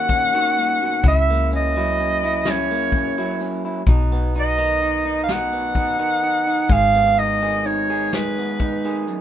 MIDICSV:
0, 0, Header, 1, 5, 480
1, 0, Start_track
1, 0, Tempo, 944882
1, 528, Time_signature, 6, 3, 24, 8
1, 4678, End_track
2, 0, Start_track
2, 0, Title_t, "Clarinet"
2, 0, Program_c, 0, 71
2, 0, Note_on_c, 0, 78, 101
2, 534, Note_off_c, 0, 78, 0
2, 548, Note_on_c, 0, 76, 90
2, 762, Note_off_c, 0, 76, 0
2, 793, Note_on_c, 0, 75, 87
2, 1273, Note_on_c, 0, 73, 82
2, 1280, Note_off_c, 0, 75, 0
2, 1798, Note_off_c, 0, 73, 0
2, 2233, Note_on_c, 0, 75, 101
2, 2641, Note_off_c, 0, 75, 0
2, 2660, Note_on_c, 0, 77, 73
2, 2703, Note_on_c, 0, 78, 108
2, 2711, Note_off_c, 0, 77, 0
2, 3417, Note_on_c, 0, 77, 106
2, 3424, Note_off_c, 0, 78, 0
2, 3652, Note_on_c, 0, 75, 89
2, 3660, Note_off_c, 0, 77, 0
2, 3891, Note_on_c, 0, 73, 81
2, 3899, Note_off_c, 0, 75, 0
2, 4136, Note_on_c, 0, 71, 76
2, 4144, Note_off_c, 0, 73, 0
2, 4675, Note_off_c, 0, 71, 0
2, 4678, End_track
3, 0, Start_track
3, 0, Title_t, "Clean electric guitar"
3, 0, Program_c, 1, 27
3, 0, Note_on_c, 1, 39, 64
3, 0, Note_on_c, 1, 51, 60
3, 0, Note_on_c, 1, 58, 54
3, 0, Note_on_c, 1, 61, 57
3, 0, Note_on_c, 1, 66, 50
3, 51, Note_off_c, 1, 61, 0
3, 61, Note_on_c, 1, 61, 57
3, 167, Note_off_c, 1, 51, 0
3, 173, Note_on_c, 1, 51, 60
3, 175, Note_off_c, 1, 66, 0
3, 177, Note_on_c, 1, 66, 59
3, 296, Note_on_c, 1, 46, 62
3, 412, Note_off_c, 1, 46, 0
3, 415, Note_on_c, 1, 47, 59
3, 503, Note_off_c, 1, 58, 0
3, 506, Note_off_c, 1, 61, 0
3, 530, Note_off_c, 1, 51, 0
3, 531, Note_off_c, 1, 39, 0
3, 532, Note_off_c, 1, 47, 0
3, 535, Note_on_c, 1, 49, 64
3, 537, Note_off_c, 1, 66, 0
3, 539, Note_on_c, 1, 64, 53
3, 661, Note_on_c, 1, 58, 52
3, 776, Note_on_c, 1, 61, 58
3, 891, Note_off_c, 1, 49, 0
3, 892, Note_off_c, 1, 64, 0
3, 895, Note_on_c, 1, 54, 59
3, 900, Note_on_c, 1, 64, 62
3, 1009, Note_off_c, 1, 61, 0
3, 1015, Note_on_c, 1, 61, 55
3, 1132, Note_off_c, 1, 64, 0
3, 1138, Note_on_c, 1, 64, 63
3, 1252, Note_off_c, 1, 64, 0
3, 1257, Note_on_c, 1, 49, 69
3, 1262, Note_on_c, 1, 64, 63
3, 1371, Note_off_c, 1, 58, 0
3, 1377, Note_on_c, 1, 58, 57
3, 1489, Note_off_c, 1, 61, 0
3, 1496, Note_on_c, 1, 61, 60
3, 1608, Note_off_c, 1, 54, 0
3, 1610, Note_off_c, 1, 49, 0
3, 1610, Note_off_c, 1, 64, 0
3, 1614, Note_on_c, 1, 54, 63
3, 1616, Note_on_c, 1, 64, 65
3, 1727, Note_off_c, 1, 61, 0
3, 1733, Note_on_c, 1, 61, 61
3, 1848, Note_off_c, 1, 64, 0
3, 1854, Note_on_c, 1, 64, 61
3, 1939, Note_off_c, 1, 61, 0
3, 1940, Note_off_c, 1, 54, 0
3, 1940, Note_off_c, 1, 64, 0
3, 1941, Note_off_c, 1, 58, 0
3, 1967, Note_on_c, 1, 47, 70
3, 1972, Note_on_c, 1, 63, 64
3, 2094, Note_on_c, 1, 59, 54
3, 2212, Note_off_c, 1, 63, 0
3, 2214, Note_on_c, 1, 63, 62
3, 2325, Note_off_c, 1, 47, 0
3, 2327, Note_on_c, 1, 51, 60
3, 2328, Note_off_c, 1, 63, 0
3, 2330, Note_on_c, 1, 63, 62
3, 2447, Note_off_c, 1, 63, 0
3, 2449, Note_on_c, 1, 63, 63
3, 2566, Note_off_c, 1, 63, 0
3, 2568, Note_on_c, 1, 63, 62
3, 2686, Note_on_c, 1, 47, 73
3, 2687, Note_off_c, 1, 63, 0
3, 2689, Note_on_c, 1, 63, 65
3, 2800, Note_off_c, 1, 59, 0
3, 2806, Note_on_c, 1, 59, 60
3, 2924, Note_off_c, 1, 63, 0
3, 2926, Note_on_c, 1, 63, 67
3, 3037, Note_off_c, 1, 51, 0
3, 3043, Note_off_c, 1, 47, 0
3, 3043, Note_on_c, 1, 51, 64
3, 3044, Note_off_c, 1, 63, 0
3, 3046, Note_on_c, 1, 63, 65
3, 3164, Note_off_c, 1, 63, 0
3, 3166, Note_on_c, 1, 63, 67
3, 3286, Note_off_c, 1, 63, 0
3, 3288, Note_on_c, 1, 63, 63
3, 3375, Note_off_c, 1, 59, 0
3, 3405, Note_on_c, 1, 44, 74
3, 3407, Note_off_c, 1, 63, 0
3, 3409, Note_on_c, 1, 68, 65
3, 3529, Note_on_c, 1, 59, 57
3, 3649, Note_on_c, 1, 63, 54
3, 3762, Note_off_c, 1, 51, 0
3, 3767, Note_off_c, 1, 68, 0
3, 3768, Note_on_c, 1, 51, 60
3, 3772, Note_on_c, 1, 68, 60
3, 3889, Note_off_c, 1, 63, 0
3, 3891, Note_on_c, 1, 63, 54
3, 4007, Note_off_c, 1, 68, 0
3, 4013, Note_on_c, 1, 68, 62
3, 4123, Note_off_c, 1, 44, 0
3, 4126, Note_off_c, 1, 68, 0
3, 4129, Note_on_c, 1, 44, 70
3, 4132, Note_on_c, 1, 68, 62
3, 4251, Note_off_c, 1, 59, 0
3, 4258, Note_on_c, 1, 59, 52
3, 4368, Note_off_c, 1, 63, 0
3, 4374, Note_on_c, 1, 63, 56
3, 4489, Note_off_c, 1, 51, 0
3, 4491, Note_off_c, 1, 68, 0
3, 4495, Note_on_c, 1, 51, 58
3, 4497, Note_on_c, 1, 68, 62
3, 4608, Note_off_c, 1, 44, 0
3, 4610, Note_on_c, 1, 42, 60
3, 4678, Note_off_c, 1, 42, 0
3, 4678, Note_off_c, 1, 51, 0
3, 4678, Note_off_c, 1, 59, 0
3, 4678, Note_off_c, 1, 63, 0
3, 4678, Note_off_c, 1, 68, 0
3, 4678, End_track
4, 0, Start_track
4, 0, Title_t, "Fingered electric bass"
4, 0, Program_c, 2, 33
4, 0, Note_on_c, 2, 39, 71
4, 508, Note_off_c, 2, 39, 0
4, 528, Note_on_c, 2, 37, 73
4, 1944, Note_off_c, 2, 37, 0
4, 1965, Note_on_c, 2, 35, 73
4, 3382, Note_off_c, 2, 35, 0
4, 3402, Note_on_c, 2, 32, 75
4, 4678, Note_off_c, 2, 32, 0
4, 4678, End_track
5, 0, Start_track
5, 0, Title_t, "Drums"
5, 46, Note_on_c, 9, 42, 47
5, 47, Note_on_c, 9, 36, 63
5, 97, Note_off_c, 9, 42, 0
5, 98, Note_off_c, 9, 36, 0
5, 288, Note_on_c, 9, 42, 49
5, 339, Note_off_c, 9, 42, 0
5, 526, Note_on_c, 9, 42, 69
5, 527, Note_on_c, 9, 36, 85
5, 576, Note_off_c, 9, 42, 0
5, 578, Note_off_c, 9, 36, 0
5, 766, Note_on_c, 9, 42, 55
5, 817, Note_off_c, 9, 42, 0
5, 1004, Note_on_c, 9, 42, 56
5, 1055, Note_off_c, 9, 42, 0
5, 1244, Note_on_c, 9, 42, 69
5, 1247, Note_on_c, 9, 38, 84
5, 1295, Note_off_c, 9, 42, 0
5, 1298, Note_off_c, 9, 38, 0
5, 1484, Note_on_c, 9, 42, 49
5, 1485, Note_on_c, 9, 36, 63
5, 1535, Note_off_c, 9, 42, 0
5, 1536, Note_off_c, 9, 36, 0
5, 1725, Note_on_c, 9, 42, 51
5, 1775, Note_off_c, 9, 42, 0
5, 1965, Note_on_c, 9, 36, 85
5, 1965, Note_on_c, 9, 42, 65
5, 2015, Note_off_c, 9, 36, 0
5, 2015, Note_off_c, 9, 42, 0
5, 2204, Note_on_c, 9, 42, 48
5, 2255, Note_off_c, 9, 42, 0
5, 2445, Note_on_c, 9, 42, 51
5, 2496, Note_off_c, 9, 42, 0
5, 2682, Note_on_c, 9, 42, 63
5, 2685, Note_on_c, 9, 38, 83
5, 2733, Note_off_c, 9, 42, 0
5, 2736, Note_off_c, 9, 38, 0
5, 2921, Note_on_c, 9, 36, 62
5, 2922, Note_on_c, 9, 42, 45
5, 2972, Note_off_c, 9, 36, 0
5, 2973, Note_off_c, 9, 42, 0
5, 3158, Note_on_c, 9, 42, 47
5, 3209, Note_off_c, 9, 42, 0
5, 3400, Note_on_c, 9, 42, 63
5, 3401, Note_on_c, 9, 36, 86
5, 3451, Note_off_c, 9, 42, 0
5, 3452, Note_off_c, 9, 36, 0
5, 3641, Note_on_c, 9, 42, 51
5, 3692, Note_off_c, 9, 42, 0
5, 3884, Note_on_c, 9, 42, 49
5, 3934, Note_off_c, 9, 42, 0
5, 4126, Note_on_c, 9, 42, 67
5, 4128, Note_on_c, 9, 38, 87
5, 4177, Note_off_c, 9, 42, 0
5, 4179, Note_off_c, 9, 38, 0
5, 4368, Note_on_c, 9, 36, 62
5, 4370, Note_on_c, 9, 42, 46
5, 4419, Note_off_c, 9, 36, 0
5, 4421, Note_off_c, 9, 42, 0
5, 4611, Note_on_c, 9, 42, 51
5, 4662, Note_off_c, 9, 42, 0
5, 4678, End_track
0, 0, End_of_file